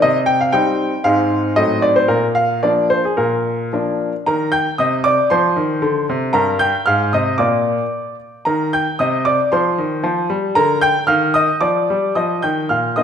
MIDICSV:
0, 0, Header, 1, 2, 480
1, 0, Start_track
1, 0, Tempo, 519481
1, 19, Time_signature, 2, 2, 24, 8
1, 1939, Tempo, 537634
1, 4339, Tempo, 524017
1, 9619, Tempo, 535236
1, 11846, End_track
2, 0, Start_track
2, 0, Title_t, "Grand piano"
2, 0, Program_c, 0, 0
2, 20, Note_on_c, 0, 75, 75
2, 25, Note_on_c, 0, 48, 59
2, 163, Note_off_c, 0, 75, 0
2, 241, Note_on_c, 0, 79, 84
2, 368, Note_off_c, 0, 79, 0
2, 376, Note_on_c, 0, 77, 70
2, 484, Note_off_c, 0, 48, 0
2, 485, Note_on_c, 0, 79, 82
2, 490, Note_on_c, 0, 55, 49
2, 493, Note_on_c, 0, 60, 47
2, 495, Note_off_c, 0, 77, 0
2, 501, Note_on_c, 0, 63, 47
2, 836, Note_off_c, 0, 55, 0
2, 838, Note_off_c, 0, 60, 0
2, 843, Note_off_c, 0, 63, 0
2, 931, Note_off_c, 0, 79, 0
2, 963, Note_on_c, 0, 77, 79
2, 966, Note_on_c, 0, 44, 59
2, 967, Note_on_c, 0, 56, 44
2, 971, Note_on_c, 0, 60, 41
2, 981, Note_on_c, 0, 63, 44
2, 1414, Note_off_c, 0, 56, 0
2, 1416, Note_off_c, 0, 60, 0
2, 1421, Note_off_c, 0, 63, 0
2, 1436, Note_off_c, 0, 44, 0
2, 1443, Note_on_c, 0, 75, 76
2, 1449, Note_off_c, 0, 77, 0
2, 1449, Note_on_c, 0, 54, 40
2, 1450, Note_on_c, 0, 45, 56
2, 1460, Note_on_c, 0, 60, 43
2, 1461, Note_on_c, 0, 63, 44
2, 1666, Note_off_c, 0, 75, 0
2, 1685, Note_on_c, 0, 74, 71
2, 1811, Note_on_c, 0, 72, 69
2, 1812, Note_off_c, 0, 74, 0
2, 1900, Note_off_c, 0, 54, 0
2, 1905, Note_off_c, 0, 60, 0
2, 1906, Note_off_c, 0, 63, 0
2, 1923, Note_off_c, 0, 45, 0
2, 1924, Note_on_c, 0, 70, 66
2, 1926, Note_on_c, 0, 46, 54
2, 1936, Note_off_c, 0, 72, 0
2, 2071, Note_off_c, 0, 70, 0
2, 2163, Note_on_c, 0, 77, 71
2, 2383, Note_off_c, 0, 77, 0
2, 2393, Note_off_c, 0, 46, 0
2, 2412, Note_on_c, 0, 74, 66
2, 2415, Note_on_c, 0, 53, 40
2, 2419, Note_on_c, 0, 58, 38
2, 2420, Note_on_c, 0, 62, 43
2, 2630, Note_off_c, 0, 74, 0
2, 2654, Note_on_c, 0, 72, 67
2, 2764, Note_off_c, 0, 53, 0
2, 2766, Note_off_c, 0, 58, 0
2, 2767, Note_off_c, 0, 62, 0
2, 2776, Note_off_c, 0, 72, 0
2, 2789, Note_on_c, 0, 68, 54
2, 2896, Note_on_c, 0, 70, 55
2, 2902, Note_on_c, 0, 46, 50
2, 2905, Note_off_c, 0, 68, 0
2, 3346, Note_off_c, 0, 70, 0
2, 3371, Note_off_c, 0, 46, 0
2, 3395, Note_on_c, 0, 53, 34
2, 3401, Note_on_c, 0, 58, 36
2, 3402, Note_on_c, 0, 62, 40
2, 3738, Note_off_c, 0, 53, 0
2, 3741, Note_off_c, 0, 58, 0
2, 3742, Note_off_c, 0, 62, 0
2, 3873, Note_on_c, 0, 82, 65
2, 3875, Note_on_c, 0, 51, 58
2, 3884, Note_on_c, 0, 70, 51
2, 4095, Note_off_c, 0, 70, 0
2, 4098, Note_on_c, 0, 91, 80
2, 4105, Note_on_c, 0, 79, 58
2, 4106, Note_off_c, 0, 82, 0
2, 4212, Note_off_c, 0, 51, 0
2, 4312, Note_off_c, 0, 91, 0
2, 4323, Note_off_c, 0, 79, 0
2, 4336, Note_on_c, 0, 87, 73
2, 4342, Note_on_c, 0, 48, 59
2, 4350, Note_on_c, 0, 75, 55
2, 4481, Note_off_c, 0, 87, 0
2, 4568, Note_off_c, 0, 75, 0
2, 4571, Note_on_c, 0, 86, 79
2, 4582, Note_on_c, 0, 74, 60
2, 4685, Note_off_c, 0, 48, 0
2, 4789, Note_off_c, 0, 86, 0
2, 4802, Note_off_c, 0, 74, 0
2, 4810, Note_on_c, 0, 84, 69
2, 4820, Note_on_c, 0, 72, 55
2, 4821, Note_on_c, 0, 53, 63
2, 5044, Note_off_c, 0, 53, 0
2, 5050, Note_on_c, 0, 51, 63
2, 5277, Note_off_c, 0, 51, 0
2, 5285, Note_on_c, 0, 50, 70
2, 5492, Note_off_c, 0, 72, 0
2, 5513, Note_off_c, 0, 50, 0
2, 5524, Note_off_c, 0, 84, 0
2, 5537, Note_on_c, 0, 48, 64
2, 5752, Note_on_c, 0, 82, 72
2, 5757, Note_off_c, 0, 48, 0
2, 5757, Note_on_c, 0, 43, 66
2, 5758, Note_on_c, 0, 70, 53
2, 5899, Note_off_c, 0, 82, 0
2, 5983, Note_off_c, 0, 70, 0
2, 5994, Note_on_c, 0, 91, 85
2, 6006, Note_on_c, 0, 79, 60
2, 6105, Note_off_c, 0, 43, 0
2, 6141, Note_off_c, 0, 91, 0
2, 6228, Note_off_c, 0, 79, 0
2, 6235, Note_on_c, 0, 89, 75
2, 6246, Note_on_c, 0, 44, 63
2, 6250, Note_on_c, 0, 77, 60
2, 6456, Note_off_c, 0, 89, 0
2, 6471, Note_off_c, 0, 77, 0
2, 6474, Note_off_c, 0, 44, 0
2, 6486, Note_on_c, 0, 87, 68
2, 6494, Note_on_c, 0, 48, 56
2, 6496, Note_on_c, 0, 75, 57
2, 6703, Note_off_c, 0, 87, 0
2, 6713, Note_on_c, 0, 86, 63
2, 6716, Note_off_c, 0, 75, 0
2, 6720, Note_off_c, 0, 48, 0
2, 6723, Note_on_c, 0, 58, 41
2, 6724, Note_on_c, 0, 46, 47
2, 6725, Note_on_c, 0, 65, 39
2, 6727, Note_on_c, 0, 74, 46
2, 7066, Note_off_c, 0, 46, 0
2, 7114, Note_off_c, 0, 58, 0
2, 7116, Note_off_c, 0, 65, 0
2, 7414, Note_off_c, 0, 86, 0
2, 7420, Note_off_c, 0, 74, 0
2, 7696, Note_on_c, 0, 82, 62
2, 7708, Note_on_c, 0, 51, 60
2, 7709, Note_on_c, 0, 70, 47
2, 7916, Note_off_c, 0, 82, 0
2, 7930, Note_off_c, 0, 70, 0
2, 7953, Note_on_c, 0, 91, 74
2, 7960, Note_on_c, 0, 79, 51
2, 8054, Note_off_c, 0, 51, 0
2, 8096, Note_off_c, 0, 91, 0
2, 8178, Note_off_c, 0, 79, 0
2, 8190, Note_on_c, 0, 87, 75
2, 8196, Note_on_c, 0, 48, 58
2, 8203, Note_on_c, 0, 75, 52
2, 8405, Note_off_c, 0, 87, 0
2, 8420, Note_off_c, 0, 75, 0
2, 8428, Note_on_c, 0, 86, 73
2, 8438, Note_on_c, 0, 74, 55
2, 8539, Note_off_c, 0, 48, 0
2, 8572, Note_off_c, 0, 86, 0
2, 8656, Note_off_c, 0, 74, 0
2, 8672, Note_on_c, 0, 84, 64
2, 8679, Note_on_c, 0, 53, 60
2, 8682, Note_on_c, 0, 72, 49
2, 8900, Note_off_c, 0, 53, 0
2, 8916, Note_on_c, 0, 51, 63
2, 9099, Note_off_c, 0, 84, 0
2, 9137, Note_off_c, 0, 51, 0
2, 9147, Note_on_c, 0, 53, 65
2, 9352, Note_off_c, 0, 72, 0
2, 9371, Note_off_c, 0, 53, 0
2, 9386, Note_on_c, 0, 55, 66
2, 9609, Note_off_c, 0, 55, 0
2, 9621, Note_on_c, 0, 82, 86
2, 9628, Note_on_c, 0, 50, 79
2, 9629, Note_on_c, 0, 70, 62
2, 9831, Note_off_c, 0, 82, 0
2, 9842, Note_off_c, 0, 70, 0
2, 9856, Note_on_c, 0, 91, 93
2, 9864, Note_on_c, 0, 79, 80
2, 9966, Note_off_c, 0, 50, 0
2, 10070, Note_off_c, 0, 91, 0
2, 10081, Note_off_c, 0, 79, 0
2, 10084, Note_on_c, 0, 89, 79
2, 10090, Note_on_c, 0, 51, 76
2, 10094, Note_on_c, 0, 77, 57
2, 10317, Note_off_c, 0, 77, 0
2, 10327, Note_on_c, 0, 87, 84
2, 10328, Note_off_c, 0, 89, 0
2, 10339, Note_on_c, 0, 75, 56
2, 10437, Note_off_c, 0, 51, 0
2, 10560, Note_off_c, 0, 75, 0
2, 10565, Note_on_c, 0, 86, 66
2, 10569, Note_on_c, 0, 53, 53
2, 10570, Note_off_c, 0, 87, 0
2, 10575, Note_on_c, 0, 74, 51
2, 10801, Note_off_c, 0, 53, 0
2, 10830, Note_on_c, 0, 55, 54
2, 11018, Note_off_c, 0, 86, 0
2, 11024, Note_off_c, 0, 74, 0
2, 11053, Note_off_c, 0, 55, 0
2, 11056, Note_on_c, 0, 87, 58
2, 11061, Note_on_c, 0, 53, 50
2, 11062, Note_on_c, 0, 75, 46
2, 11276, Note_off_c, 0, 87, 0
2, 11286, Note_off_c, 0, 75, 0
2, 11290, Note_off_c, 0, 53, 0
2, 11300, Note_on_c, 0, 91, 63
2, 11310, Note_on_c, 0, 51, 54
2, 11310, Note_on_c, 0, 79, 43
2, 11517, Note_off_c, 0, 91, 0
2, 11529, Note_off_c, 0, 79, 0
2, 11534, Note_off_c, 0, 51, 0
2, 11540, Note_on_c, 0, 89, 53
2, 11548, Note_on_c, 0, 46, 44
2, 11552, Note_on_c, 0, 77, 39
2, 11755, Note_off_c, 0, 89, 0
2, 11768, Note_off_c, 0, 77, 0
2, 11775, Note_off_c, 0, 46, 0
2, 11780, Note_on_c, 0, 87, 63
2, 11788, Note_on_c, 0, 62, 36
2, 11790, Note_on_c, 0, 58, 36
2, 11794, Note_on_c, 0, 75, 44
2, 11796, Note_on_c, 0, 65, 38
2, 11846, Note_off_c, 0, 58, 0
2, 11846, Note_off_c, 0, 62, 0
2, 11846, Note_off_c, 0, 65, 0
2, 11846, Note_off_c, 0, 75, 0
2, 11846, Note_off_c, 0, 87, 0
2, 11846, End_track
0, 0, End_of_file